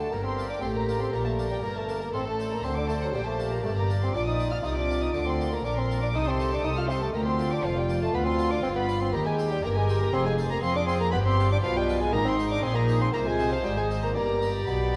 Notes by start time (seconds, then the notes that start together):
0.00 A3 A5
0.10 G1 G2 A#3 G4 A#4 A#5
0.23 C4 C6
0.39 A#3 D4
0.49 D4 D6
0.61 A1 A2 C4 G4 C6
0.74 A#3 A#5
0.89 A#3 D4
0.99 C4 C6
1.12 A#1 A#2 A#3 A#4 A#5
1.24 A3 A5
1.39 A#3 D4
1.49 G3 G5
1.61 G1 G2 A#3 A#4 A#5
1.75 A3 A5
1.89 A#3 D4
2.01 A#3 A#5
2.13 A1 A2 C4 A4 C6
2.26 A3 A5
2.40 C4 D4
2.51 A#3 A#5
2.63 D2 D3 C4 A4 C5 C6
2.75 D4 D6
2.88 A3 C4 D4 A5
3.01 F#3 F#5
3.13 A#1 A#2 G3 G4 G5
3.25 A3 A5
3.39 A#3 D4
3.51 A#3 A#5
3.64 G1 G2 A3 G4 D5 A5
3.76 A#3 A#5
3.90 A#3 D4
4.02 C4 C6
4.14 A#1 A#2 D4 F4 D6
4.27 D#4 D#6
4.40 A#3 D4
4.52 F4 F6
4.64 C2 C3 D#4 D#6
4.76 D4 D6
4.90 A#3 D4
5.02 D#4 D#6
5.14 D2 D3 D4 D6
5.26 C4 C6
5.41 A#3 D4
5.52 A#3 A#5
5.64 A#1 A#2 D4 A#4 D6
5.77 C4 C6
5.91 A#3 D4
6.02 D4 D6
6.14 C2 C3 D#4 G4 A4 D#6
6.27 C4 C6
6.39 A3 D#4
6.53 D4 D6
6.64 C2 D#4 D#6
6.76 F4 F6
6.89 A3 C4 D#4 C6
7.02 A3 A5
7.14 D2 A#3 F4 G4 A#5
7.26 C4 C6
7.39 A#3 D4
7.52 D4 D6
7.64 F1 F2 F3 F4 F5
7.77 G3 G5
7.89 A#3 D4
8.02 A3 A5
8.13 D2 B3 B5
8.25 C4 C6
8.39 D4 F4
8.51 D4 D6
8.63 G1 G2 C4 C6
8.76 B3 B5
8.89 D4 F4
9.01 C4 C6
9.12 D#2 A#3 G4 A#5
9.26 G#3 G#5
9.38 C4 G4
9.51 G3 G5
9.63 G1 G2 A#3 A#4 A#5
9.75 G#3 G#5
9.89 C4 G4
10.00 A#3 A#5
10.13 F1 F2 C4 G#4 C6
10.25 G#3 G#5
10.38 C4 F4
10.49 A#3 A#5
10.62 F2 F3 C4 G#4 C6
10.74 D4 D6
10.87 C4 F4 C6
10.99 A#3 A#5
11.12 G1 G2 B3 G4 B5
11.26 C4 C6
11.40 D4 F4
11.51 D4 D6
11.63 B1 B2 F3 F4 B4 F5
11.76 G3 G5
11.89 D4 F4
12.00 G#3 G#5
12.12 G#1 G#2 A#3 D#4 A#4 A#5
12.25 C4 C6
12.39 C4 D#4
12.51 D4 D6
12.62 A#1 A#2 C4 D#4 G#4 C6
12.75 A#3 A#5
12.89 C4 D#4
13.01 C4 C6
13.13 C2 C3 A#3 F4 C5 A#5
13.26 G#3 G#5
13.39 C4 D#4
13.51 F3 F5
13.64 G#1 G#2 G3 D#4 G5
13.77 G#3 G#5
13.91 C4 D#4
14.02 A#3 A#5
14.15 G1 G2 A#3 G4 D5 A#5
14.42 D4 G4
14.66 B1 B2 B3 B5